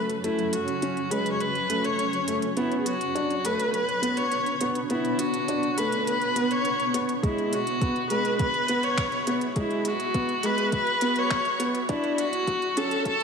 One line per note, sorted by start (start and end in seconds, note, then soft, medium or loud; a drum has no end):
0.00 2.57 F#3 medium
0.00 0.12 A3 medium
0.00 2.57 C#4 medium
0.00 7.24 F#4 medium
0.00 8.52 C#5 medium
0.09 closed hi-hat soft
0.23 0.58 A3 medium
0.23 0.55 E4 medium
0.23 closed hi-hat soft
0.39 closed hi-hat soft
0.53 1.12 F#4 medium
0.53 closed hi-hat medium
0.68 closed hi-hat soft
0.82 0.99 C#4 medium
0.82 closed hi-hat soft
0.97 closed hi-hat soft
1.11 1.45 G#3 medium
1.11 1.32 B4 medium
1.11 closed hi-hat medium
1.26 closed hi-hat soft
1.32 1.42 C#5 medium
1.40 1.87 B4 medium
1.40 closed hi-hat soft
1.55 closed hi-hat soft
1.70 2.03 A3 medium
1.70 closed hi-hat medium
1.84 2.29 C#5 loud
1.84 closed hi-hat soft
1.99 closed hi-hat soft
2.13 closed hi-hat soft
2.28 2.45 A3 medium
2.28 closed hi-hat medium
2.42 closed hi-hat soft
2.57 13.23 B3 medium
2.57 2.91 B3 medium
2.57 2.78 E4 medium
2.57 closed hi-hat soft
2.72 closed hi-hat soft
2.79 2.87 G#4 medium
2.86 9.06 D4 medium
2.86 3.47 F#4 medium
2.86 closed hi-hat medium
3.01 closed hi-hat soft
3.15 3.32 D4 medium
3.15 closed hi-hat soft
3.30 closed hi-hat soft
3.45 3.78 A3 medium
3.45 3.73 B4 medium
3.45 closed hi-hat medium
3.60 closed hi-hat soft
3.74 4.18 B4 medium
3.74 closed hi-hat soft
3.89 closed hi-hat soft
4.02 4.36 B3 medium
4.02 closed hi-hat medium
4.17 4.61 C#5 loud
4.17 closed hi-hat soft
4.32 closed hi-hat soft
4.46 closed hi-hat soft
4.61 4.78 B3 medium
4.61 closed hi-hat medium
4.75 closed hi-hat soft
4.90 5.24 B3 medium
4.90 5.21 E4 medium
4.90 closed hi-hat soft
5.05 closed hi-hat soft
5.19 5.79 F#4 medium
5.19 closed hi-hat medium
5.34 closed hi-hat soft
5.48 5.66 D4 medium
5.48 closed hi-hat soft
5.63 closed hi-hat soft
5.78 6.12 A3 medium
5.78 6.06 B4 medium
5.78 closed hi-hat medium
5.92 closed hi-hat soft
6.07 6.53 B4 loud
6.07 closed hi-hat soft
6.22 closed hi-hat soft
6.36 6.70 B3 medium
6.36 closed hi-hat medium
6.51 6.95 C#5 loud
6.51 closed hi-hat soft
6.65 closed hi-hat soft
6.80 closed hi-hat soft
6.94 7.11 B3 medium
6.94 closed hi-hat medium
7.09 closed hi-hat soft
7.23 7.57 G#3 medium
7.23 7.55 E4 medium
7.23 kick medium
7.23 closed hi-hat soft
7.38 closed hi-hat soft
7.44 11.90 G#4 medium
7.44 13.23 E5 medium
7.53 13.23 F#4 medium
7.53 8.10 F#4 medium
7.53 closed hi-hat medium
7.67 closed hi-hat soft
7.81 7.98 B3 medium
7.81 kick loud
7.81 closed hi-hat soft
7.96 closed hi-hat soft
8.10 8.44 G#3 medium
8.10 8.38 B4 medium
8.10 closed hi-hat medium
8.25 closed hi-hat soft
8.39 8.85 B4 loud
8.39 kick loud
8.39 closed hi-hat soft
8.54 closed hi-hat soft
8.68 9.03 B3 medium
8.68 closed hi-hat medium
8.83 9.27 C#5 loud
8.83 closed hi-hat soft
8.98 finger snap medium
8.98 kick loud
8.98 closed hi-hat soft
9.12 closed hi-hat soft
9.27 9.44 B3 medium
9.27 closed hi-hat medium
9.41 closed hi-hat soft
9.56 9.90 G#3 medium
9.56 9.90 E4 medium
9.56 kick medium
9.56 closed hi-hat soft
9.71 closed hi-hat soft
9.85 10.47 F#4 medium
9.85 closed hi-hat medium
10.00 closed hi-hat soft
10.14 10.31 B3 medium
10.14 kick medium
10.14 closed hi-hat soft
10.29 closed hi-hat soft
10.43 10.77 G#3 medium
10.43 10.73 B4 loud
10.43 closed hi-hat medium
10.58 closed hi-hat soft
10.72 11.20 B4 loud
10.72 kick medium
10.72 closed hi-hat soft
10.87 closed hi-hat soft
11.01 11.36 B3 medium
11.01 closed hi-hat medium
11.16 11.61 C#5 loud
11.16 closed hi-hat soft
11.30 finger snap medium
11.30 kick medium
11.30 closed hi-hat soft
11.45 closed hi-hat soft
11.60 11.77 B3 medium
11.60 closed hi-hat medium
11.75 closed hi-hat soft
11.89 13.23 F#3 medium
11.89 12.23 D4 medium
11.89 12.21 E4 medium
11.89 kick medium
11.89 closed hi-hat soft
11.97 13.23 D3 medium
12.04 closed hi-hat soft
12.18 12.79 F#4 loud
12.18 13.23 F#5 medium
12.18 closed hi-hat medium
12.33 closed hi-hat soft
12.47 12.64 F#4 medium
12.47 kick medium
12.47 closed hi-hat soft
12.56 13.23 A5 medium
12.62 closed hi-hat soft
12.77 13.11 C#4 medium
12.77 13.06 A4 loud
12.77 closed hi-hat medium
12.91 closed hi-hat soft
13.05 13.23 A4 loud
13.05 kick medium
13.05 closed hi-hat soft